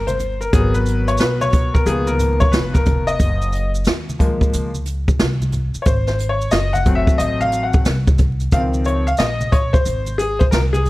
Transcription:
Already playing: G1
0.07 C5, closed hi-hat, high conga, maracas
0.20 closed hi-hat, low conga, maracas
0.41 A#4, maracas
0.53 G#1 F#3 B3 G#4 A#4, kick, closed hi-hat, maracas
0.74 B4, maracas
0.86 closed hi-hat, maracas
1.08 C#5, closed hi-hat, maracas
1.18 B1 B4, snare, closed hi-hat, maracas
1.41 C#5, high conga, maracas
1.53 kick, closed hi-hat, low conga, maracas
1.74 A#4, kick, maracas
1.86 C#2 D#3 F3 A#3 B3 G#4, closed hi-hat, maracas
2.07 A#4, high conga, maracas
2.19 closed hi-hat, low conga, maracas
2.40 C#5, kick, high conga, maracas
2.52 F1 B4, snare, closed hi-hat, maracas
2.74 A#4, kick, high conga, maracas
2.86 kick, closed hi-hat, low conga, maracas
3.07 D#5, maracas
3.20 F#1, kick, closed hi-hat, maracas
3.42 maracas
3.52 closed hi-hat, maracas
3.75 maracas
3.85 D#2, snare, closed hi-hat, maracas
4.09 high conga, maracas
4.19 F3 G#3 A#3, kick, closed hi-hat, low conga, maracas
4.41 muted upright bass stroke, kick, maracas
4.53 C#2, closed hi-hat, maracas
4.75 high conga, maracas
4.86 closed hi-hat, maracas
5.08 kick, high conga, maracas
5.19 C2, snare, closed hi-hat, maracas
5.42 high conga, maracas
5.52 closed hi-hat, low conga, maracas
5.74 muted upright bass stroke, maracas
5.82 C#5, closed hi-hat
5.86 G#1 C5, kick, maracas
6.07 C5, snare, maracas
6.19 closed hi-hat, maracas
6.29 C#5
6.41 maracas
6.51 F#1 D#5, snare, closed hi-hat, maracas
6.73 F#5, high conga, maracas
6.86 F#3 A3 C4, kick, closed hi-hat, low conga, maracas
6.95 E5
7.07 muted upright bass stroke, kick, maracas
7.18 A1 D#5, closed hi-hat, maracas
7.41 F5, high conga, maracas
7.52 closed hi-hat, maracas
7.63 F#5
7.73 kick, high conga, maracas
7.85 C2, snare, closed hi-hat, maracas
8.07 kick, high conga, maracas
8.18 kick, closed hi-hat, low conga, maracas
8.40 closed hi-hat, maracas
8.52 C#2 D#3 F3 C4 F5, kick, closed hi-hat, maracas
8.74 maracas
8.85 C#5, closed hi-hat, maracas
9.07 F5, maracas
9.17 A#1 D#5, snare, closed hi-hat, maracas
9.41 high conga, maracas
9.52 C#5, kick, closed hi-hat, low conga, maracas
9.73 C5, muted upright bass stroke, kick, maracas
9.86 G#1, closed hi-hat, maracas
10.07 high conga, maracas
10.18 G#4, closed hi-hat, maracas
10.39 C5, kick, high conga, maracas
10.51 C2 A#4, snare, closed hi-hat, maracas
10.73 G#4, closed hi-hat, high conga, maracas
10.86 closed hi-hat, low conga, maracas

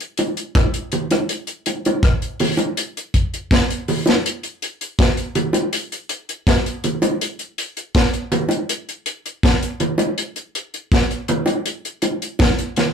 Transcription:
0.00 closed hi-hat
0.17 closed hi-hat, high bongo
0.37 closed hi-hat
0.55 kick, cross-stick, closed hi-hat, high bongo
0.74 closed hi-hat
0.92 closed hi-hat, low bongo
1.11 cross-stick, closed hi-hat, high bongo
1.29 closed hi-hat
1.47 closed hi-hat
1.66 closed hi-hat, high bongo
1.85 closed hi-hat, high bongo
2.03 kick, cross-stick, closed hi-hat
2.22 closed hi-hat
2.40 open hi-hat, low bongo
2.57 closed hi-hat, high bongo
2.77 closed hi-hat
2.97 closed hi-hat
3.14 kick, closed hi-hat
3.34 closed hi-hat
3.51 kick, snare, closed hi-hat
3.70 closed hi-hat
3.88 open hi-hat, low bongo
4.06 snare, closed hi-hat, high bongo
4.26 closed hi-hat
4.43 closed hi-hat
4.62 closed hi-hat
4.81 closed hi-hat
4.99 kick, snare, closed hi-hat
5.17 closed hi-hat
5.35 closed hi-hat, low bongo
5.53 closed hi-hat, high bongo
5.73 closed hi-hat
5.92 closed hi-hat
6.09 closed hi-hat
6.29 closed hi-hat
6.47 kick, snare, closed hi-hat
6.66 closed hi-hat
6.84 closed hi-hat, low bongo
7.02 closed hi-hat, high bongo
7.21 closed hi-hat
7.39 closed hi-hat
7.58 closed hi-hat
7.77 closed hi-hat
7.95 kick, snare, closed hi-hat
8.13 closed hi-hat
8.32 closed hi-hat, low bongo
8.49 closed hi-hat, high bongo
8.69 closed hi-hat
8.89 closed hi-hat
9.06 closed hi-hat
9.26 closed hi-hat
9.43 kick, snare, closed hi-hat
9.63 closed hi-hat
9.80 closed hi-hat, low bongo
9.98 closed hi-hat, high bongo
10.18 closed hi-hat
10.36 closed hi-hat
10.55 closed hi-hat
10.74 closed hi-hat
10.92 kick, snare, closed hi-hat
11.11 closed hi-hat
11.28 closed hi-hat, low bongo
11.46 closed hi-hat, high bongo
11.66 closed hi-hat
11.85 closed hi-hat
12.02 closed hi-hat, high bongo
12.22 closed hi-hat
12.39 kick, snare, closed hi-hat, high bongo
12.59 closed hi-hat
12.76 snare, closed hi-hat, low bongo

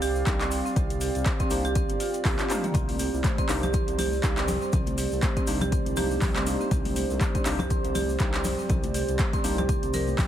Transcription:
Already playing: C2 C4 G4 D5 F5
0.02 G4, open hi-hat, shaker
0.15 shaker
0.27 C2 G3 A#3 D4 D#4 G4 C5, kick, clap, closed hi-hat, shaker
0.41 C4, clap, closed hi-hat, shaker
0.51 open hi-hat, shaker
0.66 C4, shaker
0.76 C2 C4, kick, closed hi-hat, shaker
0.90 closed hi-hat, shaker
1.01 G4, open hi-hat, shaker
1.15 C2, closed hi-hat, shaker
1.26 C5, kick, clap, closed hi-hat, shaker
1.40 C4, kick, closed hi-hat, shaker
1.51 C2 A#3 D4 D#4 G4 C5, open hi-hat, shaker
1.65 G4, closed hi-hat, shaker
1.75 C4, kick, closed hi-hat, shaker
1.89 G1, closed hi-hat, shaker
2.00 F4, open hi-hat, shaker
2.14 closed hi-hat, shaker
2.25 C2 G4, kick, clap, open hi-hat, high tom, shaker
2.39 F4, clap, closed hi-hat, high tom, shaker
2.50 A#3 D4 D#4 G4 C5, clap, open hi-hat, mid tom, shaker
2.64 A#3, closed hi-hat, mid tom, shaker
2.74 C2 C4 C5, kick, closed hi-hat, low conga, shaker
2.89 open hi-hat, high conga, shaker
2.99 G4, open hi-hat, shaker
3.14 C2, shaker
3.24 C5, kick, clap, closed hi-hat, high conga, shaker
3.38 C4, kick, closed hi-hat, shaker
3.49 C2 A#3 D4 D#4 G4 C5, clap, open hi-hat, shaker
3.63 G4, closed hi-hat, low conga, shaker
3.73 C4, kick, closed hi-hat, shaker
3.88 C2, closed hi-hat, shaker
3.98 G4, open hi-hat, high conga, low conga, shaker
4.13 shaker
4.23 C2 G3 A#3 D4 D#4 G4 C5, kick, clap, closed hi-hat, shaker
4.37 C4, clap, closed hi-hat, shaker
4.48 open hi-hat, low conga, shaker
4.62 C4, shaker
4.73 C2 C4, kick, closed hi-hat, low conga, shaker
4.87 closed hi-hat, high conga, shaker
4.98 G4, open hi-hat, shaker
5.11 C2, shaker
5.22 C5, kick, clap, closed hi-hat, high conga, shaker
5.37 C4, kick, closed hi-hat, shaker
5.47 C2 A#3 D4 D#4 G4 C5, open hi-hat, shaker
5.61 G4, closed hi-hat, low conga, shaker
5.72 C4, kick, closed hi-hat, high conga, shaker
5.86 C2, closed hi-hat, shaker
5.97 A#3 D4 D#4 G4 C5, open hi-hat, low conga, shaker
6.11 high conga, shaker
6.21 C2 G3, kick, clap, open hi-hat, low conga, shaker
6.35 C4, clap, closed hi-hat, high conga, shaker
6.46 A#3 D4 D#4 G4 C5, open hi-hat, shaker
6.61 C4, shaker
6.71 C2 C4, kick, closed hi-hat, low conga, shaker
6.85 open hi-hat, high conga, shaker
6.96 G4, open hi-hat, shaker
7.10 C2, shaker
7.21 C5, kick, clap, closed hi-hat, high conga, shaker
7.35 C4, kick, closed hi-hat, shaker
7.46 C2 A#3 D4 D#4 G4 C5, clap, open hi-hat, shaker
7.59 G4, closed hi-hat, low conga, shaker
7.70 C4, kick, closed hi-hat, shaker
7.85 C2, closed hi-hat, shaker
7.95 G4, open hi-hat, high conga, low conga, shaker
8.09 shaker
8.19 C2 G3 A#3 D4 D#4 G4 C5, kick, clap, closed hi-hat, shaker
8.34 C4, clap, closed hi-hat, shaker
8.44 open hi-hat, low conga, shaker
8.59 C4, shaker
8.69 C2 C4, kick, closed hi-hat, low conga, shaker
8.83 closed hi-hat, high conga, shaker
8.94 G4, open hi-hat, shaker
9.08 C2, closed hi-hat, shaker
9.18 C5, kick, clap, closed hi-hat, high conga, shaker
9.33 C4, kick, closed hi-hat, shaker
9.44 C2 A#3 D4 D#4 G4 C5, open hi-hat, shaker
9.58 G4, closed hi-hat, low conga, shaker
9.69 C4, kick, closed hi-hat, high conga, shaker
9.83 C2, closed hi-hat, shaker
9.94 A#4, open hi-hat, low conga, shaker
10.08 high conga, shaker
10.19 G1 G3, kick, clap, open hi-hat, low conga, shaker

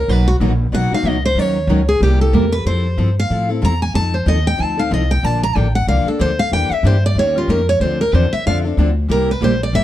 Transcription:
0.08 B1 B2 D#3 F#3 A#3 B3 D#4 F#4 A#4 B4
0.28 F#4
0.40 A#1 B2 D#3 F#3 A#3 B3 D#4 F#4 A#4
0.72 B1 B2 D#3 F#3 A#3 B3 D#4 F#4 A#4 F#5
0.91 A#3 D#4 F#4 F5, muted upright bass stroke
1.03 C#2 B2 D#3 F#3 A#3 B3 D#4 F#4 A#4
1.08 D#5
1.26 C5
1.35 D#2 D#3 F#3 C#4 D#4 A#4 C#5
1.67 C#2 D#3 F#3 C#4 D#4 A#4
1.89 G#4
2.00 C2 C3 G3 A#3 E4 G4
2.21 A#3 E4 G4 A4
2.33 E2 C3 G3 A#3 E4 G4 A#4
2.52 B4
2.65 F2 F3 C4 E4 A4 C5
2.98 G2 F3 C4 E4 A4
3.20 F5
3.30 A2 F3 C4 E4 A4
3.49 C4 E4 A4
3.61 E2 F3 C4 E4 A4 A#5
3.82 G#5
3.94 F2 F3 C4 D#4 A4 A5
4.14 C5
4.26 D#2 F3 C4 D#4 A4 D#5
4.47 G5
4.58 D2 F3 C4 D#4 A4
4.63 A5
4.77 C4 D#4 A4 F5
4.91 C2 F3 C4 D#4 A4 D#5
5.11 G5
5.23 A#1 D3 F3 A#3 D4 A4 A5
5.43 A#5
5.55 A1 D3 F3 A#3 D4 A4 G5
5.75 F#5
5.87 C2 D3 F3 A#3 D4 A4 F5
6.05 A#3 D4 A4, muted upright bass stroke
6.19 D2 D3 F3 A#3 D4 A4 C5
6.39 F5
6.52 E2 E3 A#3 D4 G4 G5
6.70 E5, muted upright bass stroke
6.83 G2 E3 A#3 D4 G4 C5
7.06 D5
7.15 D#2 D#3 A#3 C#4 G4 A#4 C#5
7.36 C#4 F4 G4 A#4
7.48 F2 D#3 A#3 C#4 G4 A#4
7.69 C#5
7.80 D2 D3 F3 C4 D4 A4 C5
8.01 A#4
8.13 E2 D3 F3 C4 D4 A4 C5
8.33 E5, muted upright bass stroke
8.46 F2 D3 F3 C4 D4 A4 F5
8.65 C4 D4 A4
8.77 D2 D3 F3 C4 D4 A4
9.08 C2 C3 G3 A#3 E4 G4 A#4
9.31 B4
9.41 A#1 C3 G3 A#3 E4 G4 C5
9.63 D5
9.73 G1 C3 G3 A#3 E4 G4 E5

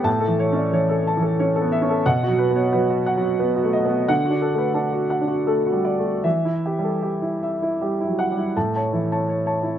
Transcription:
0.04 A2 A5
0.20 A4
0.27 E3
0.39 C#5
0.52 C#4 D5
0.72 E3 C#5
0.90 A4
1.07 A5
1.17 E3
1.22 A4
1.39 C#4 C#5
1.56 A4
1.61 B3
1.72 E5
1.82 C#4
1.90 A4
2.06 B2 F#5
2.23 F#4
2.28 F#3
2.39 B4
2.51 B3
2.56 C#5
2.72 F#3 B4
2.90 F#4
3.06 F#5
3.17 F#3
3.22 F#4
3.40 B3 B4
3.56 F#4
3.64 A3
3.73 D#5
3.85 B3
3.91 F#4
4.08 D3 F#5
4.25 F#4
4.30 D4
4.42 A4
4.54 A3 B4
4.74 D4 A4
4.93 F#4
5.10 F#5
5.21 D4
5.28 F#4
5.47 A3 A4
5.66 F#4
5.72 G3
5.85 D5
5.99 A3
6.06 F#4
6.24 E3 E5
6.45 E4
6.66 G4
6.79 G3
6.84 A4
7.03 G4
7.22 E4
7.43 E5
7.62 E4
7.81 G3 G4
8.01 E4
8.07 F#3
8.19 F#5
8.31 G3
8.38 E4
8.56 A2 A5
8.76 C#5 A5
8.93 E3 E4
9.12 C#5 A5
9.29 C#5
9.46 C#5 A5
9.63 E4

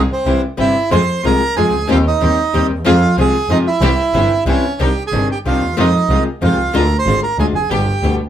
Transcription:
0.12 C4 C5
0.25 C2 C3 E3 G3 C4 E4 G4
0.57 G1 C3 E3 G3 C4 E4 G4 E5
0.90 F2 C3 F3 G#3 C4 F4 G#4 C5 C6
1.23 C2 C3 F3 G#3 C4 F4 G#4 A#4 A#5
1.56 F2 C3 F3 G#3 C4 F4 G#4 G#5
1.74 C#2
1.87 D#2 D#3 G3 C4 D#4 F4 G4 F5
2.07 D#4 D#5
2.21 D#2 D#3 G3 C4 D#4 G4
2.53 D#2 D#3 G3 C4 D#4 G4
2.70 D#2
2.85 F2 C3 F3 G#3 C4 F4 G#4 F5
3.16 C2 C3 F3 G#3 C4 F4 G#4
3.20 G#5
3.49 F2 C3 F3 G#3 C4 D#4 F4 G#4 D#5
3.67 E4 E5
3.81 C2 C3 E3 G3 C4 E4 G4
4.14 G1 C3 E3 G3 C4 E4 G4
4.46 C2 C3 E3 G3 C4 C#4 E4 G4 C#5
4.79 C2 C3 D#3 G3 C4 D4 D#4 G4 G5
5.07 G#4 G#5
5.12 G1 C3 D#3 G3 C4 D4 D#4 G4
5.32 G4 G5
5.45 C2 C3 D#3 G3 C4 D4 D#4 F4 G4 F5
5.62 D#2
5.77 F2 C3 D#3 G#3 C4 D#4 F4 D#5
6.09 C2 C3 D#3 G#3 C4 D#4 F4
6.41 F2 C3 D#3 G#3 C4 D#4 F4 F5
6.58 C2
6.73 D2 D3 G#3 D4 F4 A#4 A#5
6.99 C5 C6
7.05 G#1 D3 G#3 D4 F4
7.23 A#4 A#5
7.38 D2 D3 G#3 D4 F4 G#4 G#5
7.53 F1 G#4 G#5
7.70 G1 B2 D3 G3 B3 D4 G4 G5
8.01 D2 B2 D3 G3 B3 D4 G4

